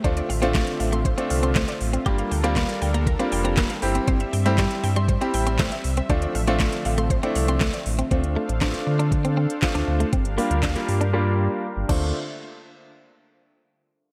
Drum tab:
CC |----------------|----------------|----------------|----------------|
HH |xxoxxxoxxxoxxxox|xxoxxxoxxxoxxxox|xxoxxxoxxxoxxxox|xxoxxxoxxxoxxxox|
CP |----x-------x---|----x-------x---|----x-------x---|----x-------x---|
SD |----o-------o---|----o-------o---|----o-------o---|----o-------o---|
BD |o---o---o---o---|o---o---o---o---|o---o---o---o---|o---o---o---o---|

CC |----------------|--------------x-|----------------|
HH |xx-xxx-xxx-xxx-x|xxoxxxox--------|----------------|
CP |----x-------x---|----x-----------|----------------|
SD |----o-------o---|----o-----------|----------------|
BD |o---o---o---o---|o---o---------o-|----------------|